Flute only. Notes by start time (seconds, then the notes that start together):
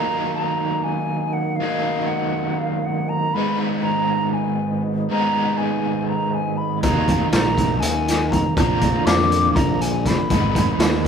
Already playing: A#5
0.34 A#5
0.84 G#5
1.33 F#5
1.56 F5
2.06 F#5
2.59 F5
2.85 F#5
3.09 A#5
3.34 B5
3.82 A#5
4.34 G#5
5.11 A#5
5.58 G#5
6.08 A#5
6.34 G#5
6.57 B5
6.82 A#5
7.32 A#5
7.80 G#5
8.31 A#5
8.57 A#5
9.06 D6
9.56 A#5
9.81 G#5
10.07 B5